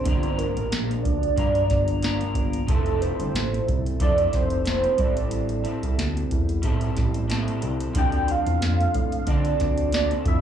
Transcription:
Already playing: soft synth lead C5
0.03 analog synth bass G1, clean electric guitar G2 D3 F3 A#3, synth keys F3 A#3 D4, kick, closed hi-hat
0.07 clean electric guitar D4 A#4, synth keys G4
0.23 closed hi-hat
0.38 soft synth lead A#4, closed hi-hat
0.57 analog synth bass A1, closed hi-hat
0.72 analog synth bass A#1, snare, closed hi-hat
0.91 closed hi-hat
1.03 analog synth bass D2, soft synth lead D5, kick, closed hi-hat
1.23 closed hi-hat
1.36 analog synth bass G2, clean electric guitar F3 A#3 D4 A#4, kick, closed hi-hat
1.55 closed hi-hat
1.70 analog synth bass G1, kick, snare, closed hi-hat
1.88 closed hi-hat
2.02 clean electric guitar F3 A#3 D4 A#4, snare, closed hi-hat
2.21 closed hi-hat
2.35 analog synth bass G1, kick, closed hi-hat
2.53 closed hi-hat
2.66 analog synth bass F1, synth keys F3 C4 E4, clean electric guitar F3 A3, soft synth lead A4, kick, closed hi-hat
2.70 clean electric guitar C4 E4 A4, synth keys A4
2.86 closed hi-hat
3.02 soft synth lead C5, closed hi-hat
3.19 analog synth bass G1, closed hi-hat
3.34 analog synth bass A1, snare, closed hi-hat
3.54 closed hi-hat
3.68 analog synth bass C2, kick, closed hi-hat
3.86 closed hi-hat
4.00 analog synth bass F2, clean electric guitar A3 C4 E4 A4, soft synth lead D5, kick, closed hi-hat
4.18 closed hi-hat
4.33 analog synth bass F1, soft synth lead C5, kick, snare, closed hi-hat
4.50 closed hi-hat
4.65 clean electric guitar A3 C4 E4 A4, soft synth lead C5, snare, closed hi-hat
4.84 closed hi-hat
4.97 analog synth bass A1, clean electric guitar A2 E3 G3 C4 E4 A4, synth keys G3 C4 E4, kick, closed hi-hat
5.01 synth keys A4, soft synth lead D5
5.17 closed hi-hat
5.31 closed hi-hat
5.49 closed hi-hat
5.64 clean electric guitar G3 C4 E4 A4, closed hi-hat
5.83 analog synth bass C2, closed hi-hat
5.98 analog synth bass D2, snare, closed hi-hat
6.17 closed hi-hat
6.31 analog synth bass E2, kick, closed hi-hat
6.49 closed hi-hat
6.62 analog synth bass A2, clean electric guitar G3 C4 E4 A4, kick, closed hi-hat
6.81 closed hi-hat
6.97 analog synth bass A1, kick, snare, closed hi-hat
7.14 closed hi-hat
7.28 clean electric guitar G3 C4 E4 A4, snare, closed hi-hat
7.48 closed hi-hat
7.62 analog synth bass C2, closed hi-hat
7.80 closed hi-hat
7.93 analog synth bass D2, clean electric guitar D3 F3 C4 D4, synth keys F3 C4 D4, kick, closed hi-hat
7.98 clean electric guitar A4, synth keys A4, soft synth lead G5
8.12 closed hi-hat
8.28 soft synth lead F5, closed hi-hat
8.47 analog synth bass E2, closed hi-hat
8.61 analog synth bass F2, snare, closed hi-hat
8.80 closed hi-hat
8.94 analog synth bass A2, kick, closed hi-hat
9.12 closed hi-hat
9.27 analog synth bass D3, clean electric guitar F3 C4 D4 A4, soft synth lead D5, kick, closed hi-hat
9.45 closed hi-hat
9.60 analog synth bass D2, kick, snare, closed hi-hat
9.78 closed hi-hat
9.93 clean electric guitar F3 C4 D4 A4, soft synth lead D5, snare, closed hi-hat
10.11 closed hi-hat
10.25 analog synth bass F2, soft synth lead E5, kick, closed hi-hat

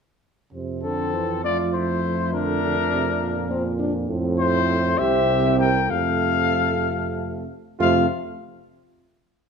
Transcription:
0.53 bass trombone F2, euphonium C3, french horn C4
0.83 euphonium D3, flugelhorn C4, trumpet A4
1.14 euphonium E3
1.43 euphonium F3, french horn A3, flugelhorn F4, trumpet D5
1.74 flugelhorn E4, trumpet C5
2.33 euphonium D3, flugelhorn D4, trumpet A#4
2.63 euphonium D3
2.93 euphonium C3
3.22 euphonium A#2, french horn A#3
3.50 french horn C4
3.79 french horn D4
4.09 bass trombone F2, euphonium A2, french horn C4
4.39 flugelhorn E4, trumpet C5
4.98 bass trombone C2, euphonium C3, flugelhorn G4, trumpet E5
5.59 flugelhorn A#4, trumpet G5
5.90 bass trombone F2, euphonium C3, french horn A3, flugelhorn A4, trumpet F5
7.79 bass trombone F2, euphonium C3, french horn A3, flugelhorn F4, trumpet F5

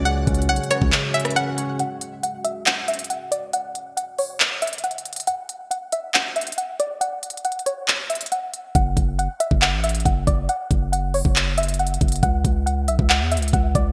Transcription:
Already playing: 808-style bass C#2, tine electric piano C#3 C#4 C#5, ambient pad C#3 G#3 F#4
0.05 tine electric piano C#3, synth pluck F#5, closed hi-hat
0.27 808-style bass C#2, tine electric piano C#4, kick, closed hi-hat
0.34 closed hi-hat
0.42 closed hi-hat
0.49 808-style bass B1, tine electric piano C#5, synth pluck F#5, closed hi-hat
0.56 closed hi-hat
0.64 closed hi-hat
0.71 synth pluck C#5, tine electric piano C#5, cross-stick, closed hi-hat
0.82 808-style bass C#2, kick
0.92 tine electric piano C#3, clap, closed hi-hat
1.14 tine electric piano C#4, synth pluck E5, closed hi-hat
1.20 closed hi-hat
1.25 cross-stick, closed hi-hat
1.30 closed hi-hat
1.36 tine electric piano C#4, synth pluck F#5, closed hi-hat
1.58 tine electric piano C#5, closed hi-hat
1.79 synth pluck F#5, closed hi-hat
2.01 closed hi-hat
2.23 synth pluck F#5, closed hi-hat
2.44 synth pluck E5, closed hi-hat
2.66 synth pluck F#5, clap, closed hi-hat
2.88 synth pluck E5, closed hi-hat
2.94 closed hi-hat
2.99 closed hi-hat
3.04 closed hi-hat
3.10 synth pluck F#5, closed hi-hat
3.31 synth pluck D5, closed hi-hat
3.53 synth pluck F#5, closed hi-hat
3.75 closed hi-hat
3.97 synth pluck F#5, closed hi-hat
4.18 synth pluck C#5, open hi-hat
4.40 clap, closed hi-hat
4.62 synth pluck E5, closed hi-hat
4.67 closed hi-hat
4.73 closed hi-hat
4.78 closed hi-hat
4.84 synth pluck F#5, closed hi-hat
4.91 closed hi-hat
4.98 closed hi-hat
5.05 closed hi-hat
5.13 closed hi-hat
5.16 closed hi-hat
5.20 closed hi-hat
5.27 synth pluck F#5, closed hi-hat
5.49 closed hi-hat
5.71 synth pluck F#5, closed hi-hat
5.92 synth pluck E5, closed hi-hat
6.14 synth pluck F#5, clap, closed hi-hat
6.36 synth pluck E5, closed hi-hat
6.41 closed hi-hat
6.47 closed hi-hat
6.52 closed hi-hat
6.58 synth pluck F#5, closed hi-hat
6.80 synth pluck D5, closed hi-hat
7.01 synth pluck F#5, closed hi-hat
7.23 closed hi-hat
7.30 closed hi-hat
7.37 closed hi-hat
7.45 synth pluck F#5, closed hi-hat
7.52 closed hi-hat
7.59 closed hi-hat
7.66 synth pluck C#5, closed hi-hat
7.88 clap, closed hi-hat
8.10 synth pluck E5, closed hi-hat
8.15 closed hi-hat
8.21 closed hi-hat
8.26 closed hi-hat
8.32 synth pluck F#5, closed hi-hat
8.54 closed hi-hat
8.75 808-style bass F#1, synth pluck F#5, kick, closed hi-hat
8.97 808-style bass F#1, kick, closed hi-hat
9.19 synth pluck F#5, closed hi-hat
9.40 synth pluck E5, closed hi-hat
9.51 808-style bass F#1, kick
9.62 synth pluck F#5, clap, closed hi-hat
9.73 808-style bass A1
9.84 synth pluck E5, closed hi-hat
9.89 closed hi-hat
9.95 closed hi-hat
10.00 closed hi-hat
10.05 808-style bass F#1, synth pluck F#5, kick, closed hi-hat
10.27 808-style bass F#1, synth pluck D5, kick, closed hi-hat
10.49 synth pluck F#5, closed hi-hat
10.71 808-style bass F#1, kick, closed hi-hat
10.92 synth pluck F#5, closed hi-hat
11.14 synth pluck C#5, open hi-hat
11.25 808-style bass F#1, kick
11.36 clap, closed hi-hat
11.58 synth pluck E5, closed hi-hat
11.63 closed hi-hat
11.69 closed hi-hat
11.74 closed hi-hat
11.79 synth pluck F#5, closed hi-hat
11.87 closed hi-hat
11.94 closed hi-hat
12.01 808-style bass F#1, kick, closed hi-hat
12.08 closed hi-hat
12.12 closed hi-hat
12.16 closed hi-hat
12.23 808-style bass C#2, synth pluck F#5, kick, closed hi-hat
12.45 808-style bass C#2, kick, closed hi-hat
12.66 synth pluck F#5, closed hi-hat
12.88 808-style bass B1, synth pluck E5, closed hi-hat
12.99 808-style bass C#2, kick
13.10 synth pluck F#5, clap, closed hi-hat
13.21 808-style bass E2
13.32 synth pluck E5, closed hi-hat
13.37 808-style bass C#2, closed hi-hat
13.42 closed hi-hat
13.48 closed hi-hat
13.53 808-style bass C#2, synth pluck F#5, kick, closed hi-hat
13.75 808-style bass C#2, synth pluck D5, kick, closed hi-hat

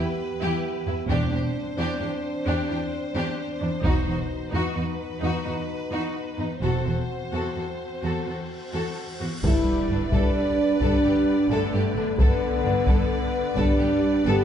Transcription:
Already playing: french horn section B3 G4, violin section B4
0.41 cello section E2, viola section E4, violin section G4
0.86 cello section E2, violin section E4, viola section E4
1.09 double bass section E1, cello section E2, timpani E2, french horn section C4 D4, viola section D4, violin section G4 C5
1.32 cello section E2, viola section D4, violin section G4
1.77 cello section E2, viola section D4, violin section G4
2.00 cello section E2, viola section D4, violin section G4
2.45 cello section E2, viola section D4, violin section G4
2.69 cello section E2, viola section D4, violin section G4
3.15 cello section E2, viola section D4, violin section G4
3.60 cello section E2, viola section D4, violin section D4
3.83 double bass section E1, cello section E2, french horn section B2 D#4, viola section D#4, violin section F#4, taiko
4.06 cello section E2, viola section D#4, violin section F#4
4.51 cello section E2, viola section D#4, violin section F#4 B4
4.74 cello section E2, viola section D#4, violin section F#4
5.21 cello section E2, viola section D#4, violin section F#4
5.44 cello section E2, viola section D#4, violin section F#4
5.91 cello section E2, viola section D#4, violin section F#4
6.37 cello section E2, viola section D#4, violin section D#4
6.60 double bass section E1, cello section E2, french horn section C4 F#4, viola section F#4, violin section A4 C5, cymbal swell
6.85 cello section E2, viola section F#4, violin section A4
7.32 cello section E2, viola section F#4, violin section A4
7.56 cello section E2, viola section F#4, violin section A4
8.02 cello section E2, viola section F#4, violin section A4
8.26 cello section E2, viola section F#4, violin section A4
8.73 cello section E2, viola section F#4, violin section A4
9.19 cello section E2, viola section F#4, violin section F#4
9.43 double bass section G1, cello section G2, viola section G3, woodwind section B3 D4 A4 B4, french horn section E4, violin section A4 B4 D5, taiko, impact
9.89 double bass section G1, cello section G2, violin section D4
10.11 double bass section G1, cello section G2, viola section G3, french horn section D4, violin section A4, taiko
10.81 double bass section G1, cello section G2, viola section G3, french horn section D4, violin section A4, taiko
11.04 double bass section G1, cello section G2, violin section G4
11.49 double bass section G1, cello section G2, viola section D3, french horn section A3, violin section A4
11.73 double bass section G1, cello section G2, violin section G4
11.95 double bass section G1, cello section G2, violin section D4
12.18 double bass section G1, cello section G2, viola section D3, woodwind section B3 D4 A4 B4, french horn section B3, violin section A4 B4 D5, taiko
12.64 double bass section G1, cello section G2, violin section D4
12.87 double bass section G1, cello section G2, violin section A4, taiko
13.55 double bass section G1, cello section G2, viola section G3, french horn section D4, violin section A4, taiko
13.78 double bass section G1, cello section G2, violin section G4
14.25 double bass section G1, cello section G2, viola section B3, french horn section G4, violin section A4

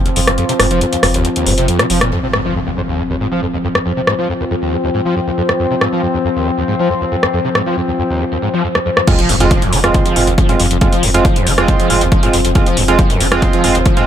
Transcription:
Already playing: synth drone F3 C4
0.06 acid bass D#2, closed hi-hat
0.16 sub bass F1, acid bass F2, open hi-hat
0.27 sub bass F1, acid bass F2, cross-stick, closed hi-hat
0.38 acid bass F2, closed hi-hat
0.49 acid bass C3, closed hi-hat
0.60 sub bass F1, acid bass G#2, cross-stick, open hi-hat
0.71 sub bass F1, acid bass F3, closed hi-hat
0.81 acid bass F2, closed hi-hat
0.93 acid bass D#2, closed hi-hat
1.03 sub bass F1, acid bass F2, cross-stick, open hi-hat
1.14 sub bass F1, acid bass D#2, closed hi-hat
1.25 acid bass F2, closed hi-hat
1.36 acid bass D#2, closed hi-hat
1.46 sub bass F1, acid bass G#2, open hi-hat
1.58 sub bass F1, acid bass C3, closed hi-hat
1.68 acid bass F2, closed hi-hat
1.79 acid bass C3, cross-stick, closed hi-hat
1.90 sub bass F1, acid bass F3, open hi-hat
2.01 sub bass F1, acid bass A#2, cross-stick, closed hi-hat
2.12 acid bass F2, synth drone F3 C4, impact
2.23 acid bass C3
2.33 acid bass G#2, cross-stick
2.45 acid bass F3
2.56 acid bass F2
2.67 acid bass D#2
2.77 acid bass F2
2.88 acid bass D#2
2.99 acid bass F2
3.10 acid bass D#2
3.20 acid bass G#2
3.32 acid bass F3
3.42 acid bass F2
3.54 acid bass D#2
3.64 acid bass F2
3.75 acid bass F2, cross-stick
3.86 acid bass F2
3.97 acid bass C3
4.07 acid bass G#2, cross-stick
4.19 acid bass F3
4.29 acid bass F2
4.40 acid bass D#2
4.51 acid bass F2
4.62 acid bass D#2
4.72 acid bass F2
4.84 acid bass D#2
4.94 acid bass G#2
5.05 acid bass F3
5.16 acid bass F2
5.27 acid bass D#2
5.38 acid bass F2
5.49 acid bass F2, cross-stick
5.60 acid bass F2
5.71 acid bass C3
5.81 acid bass G#2, cross-stick
5.92 acid bass F3
6.03 acid bass F2
6.14 acid bass D#2
6.25 acid bass F2
6.36 acid bass D#2
6.46 acid bass F2
6.58 acid bass D#2
6.68 acid bass G#2
6.79 acid bass F3
6.90 acid bass F2
7.01 acid bass D#2
7.12 acid bass F2
7.23 acid bass F2, cross-stick
7.33 acid bass F2
7.45 acid bass C3
7.55 acid bass G#2, cross-stick
7.66 acid bass F3
7.77 acid bass F2
7.88 acid bass D#2
7.99 acid bass F2
8.10 acid bass D#2
8.21 acid bass F2
8.32 acid bass D#2
8.42 acid bass G#2
8.54 acid bass F3
8.64 acid bass F2
8.75 acid bass D#2, cross-stick
8.86 acid bass F2
8.97 acid bass F2, cross-stick
9.07 acid bass F2, synth drone F3 C4, analog polysynth G#3 C4 F4, kick, closed hi-hat, crash, impact
9.19 acid bass F3, closed hi-hat
9.29 sub bass F1, acid bass F2, open hi-hat
9.40 sub bass F1, acid bass F2, analog polysynth G#3 C4 F4, closed hi-hat
9.51 acid bass F3, kick, closed hi-hat
9.62 acid bass F2, closed hi-hat
9.73 sub bass F1, acid bass D#3, open hi-hat
9.84 sub bass F1, acid bass F2, analog polysynth G#3 C4 F4, cross-stick, closed hi-hat
9.94 acid bass D#2, kick, closed hi-hat
10.06 acid bass F3, closed hi-hat
10.16 sub bass F1, acid bass F2, analog polysynth G#3 C4 F4, open hi-hat
10.27 sub bass F1, acid bass D#2, closed hi-hat
10.38 acid bass F3, kick, closed hi-hat
10.49 acid bass F2, analog polysynth G#3 C4 F4, closed hi-hat
10.60 sub bass F1, acid bass F2, open hi-hat
10.71 sub bass F1, acid bass F2, closed hi-hat
10.81 acid bass F2, analog polysynth G#3 C4 F4, kick, closed hi-hat
10.93 acid bass F3, closed hi-hat
11.03 sub bass F1, acid bass F2, open hi-hat
11.14 sub bass F1, acid bass F2, analog polysynth G#3 C4 F4, closed hi-hat
11.25 acid bass F3, kick, closed hi-hat
11.36 acid bass F2, closed hi-hat
11.47 sub bass F1, acid bass D#3, open hi-hat
11.58 sub bass F1, acid bass F2, analog polysynth G#3 C4 F4, cross-stick, closed hi-hat
11.68 acid bass D#2, kick, closed hi-hat
11.80 acid bass F3, closed hi-hat
11.90 sub bass F1, acid bass F2, analog polysynth G#3 C4 F4, open hi-hat
12.01 sub bass F1, acid bass D#2, closed hi-hat
12.12 acid bass F3, kick, closed hi-hat
12.23 acid bass F2, analog polysynth G#3 C4 F4, closed hi-hat
12.33 sub bass F1, acid bass F2, open hi-hat
12.45 sub bass F1, acid bass F2, closed hi-hat
12.55 acid bass F2, analog polysynth G#3 C4 F4, kick, closed hi-hat
12.66 acid bass F3, closed hi-hat
12.77 sub bass F1, acid bass F2, open hi-hat
12.88 sub bass F1, acid bass F2, analog polysynth G#3 C4 F4, closed hi-hat
12.99 acid bass F3, kick, closed hi-hat
13.10 acid bass F2, closed hi-hat
13.20 sub bass F1, acid bass D#3, open hi-hat
13.32 sub bass F1, acid bass F2, analog polysynth G#3 C4 F4, cross-stick, closed hi-hat
13.42 acid bass D#2, kick, closed hi-hat
13.53 acid bass F3, closed hi-hat
13.64 sub bass F1, acid bass F2, analog polysynth G#3 C4 F4, open hi-hat
13.75 sub bass F1, acid bass D#2, closed hi-hat
13.86 acid bass F3, kick, closed hi-hat
13.97 acid bass F2, analog polysynth G#3 C4 F4, closed hi-hat

